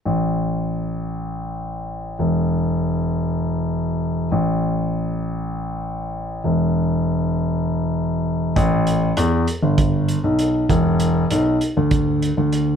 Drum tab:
HH |-------|-------|-------|-------|
BD |-------|-------|-------|-------|

HH |xxxxxxx|xxxxxxx|
BD |o---o--|o---o--|